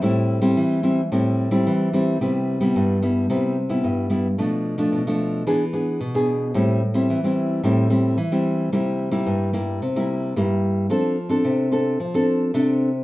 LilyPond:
\new Staff \with { instrumentName = "Nylon-string guitar" } { \time 4/4 \key a \minor \tempo 4 = 110 << { <g c' e'>8. <g c' e'>8. <g c' e'>16 r16 <g c' e'>8. <g c' e'>8. <g c' e'>8 | \key c \major <g b e'>8. <g b e'>8. <g b e'>8 <g b e'>8 r16 <g b e'>8. <g b e'>16 r16 | <f a d'>8. <f a d'>8 <f a d'>8. <b d' gis'>16 r16 <b d' gis'>8 r16 <b d' gis'>8. | <g c' e'>8 r16 <g c' e'>8 <g c' e'>8. <g c' e'>8 <g c' e'>8 r16 <g c' e'>8. |
<g bes e'>8. <g bes e'>8. <g bes e'>8 r16 <g bes e'>8. <g bes e'>4 | <c' d' a'>8 r16 <c' d' a'>8. <c' d' a'>8 r16 <c' d' a'>8. <c' d' a'>8. r16 | } \\ { a,4 e4 a,4 e4 | c4 g,4 c4 g,4 | b,4 b,4 e4 b,4 | a,4 e4 a,4 e4 |
c4 g,4 c4 g,4 | f4 c4 f4 c4 | } >> }